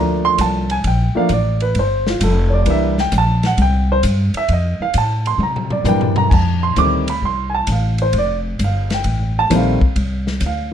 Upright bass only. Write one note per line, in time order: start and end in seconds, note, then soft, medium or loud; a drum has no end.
0.00 0.37 D2 medium
0.38 0.82 C2 medium
0.84 1.13 A#1 medium
1.15 muted upright bass stroke soft
1.30 1.74 A1 medium
1.75 2.19 G1 medium
2.20 2.65 F1 loud
2.66 3.10 C2 medium
3.12 3.56 A#1 medium
3.57 4.01 C2 medium
4.03 4.32 G2 loud
4.34 muted upright bass stroke soft
4.49 4.77 F2 medium
4.80 muted upright bass stroke soft
4.94 5.38 A2 medium
5.38 5.83 C3 medium
5.84 6.29 G2 loud
6.31 6.75 F2 medium
6.77 7.21 D2 medium
7.22 7.66 C2 medium
7.67 8.11 A1 medium
8.13 8.57 F1 medium
8.59 9.03 G1 medium
9.05 9.48 A1 medium
9.50 9.79 A#1 medium
9.81 muted upright bass stroke soft
9.96 10.39 C2 medium
10.41 10.73 D2 medium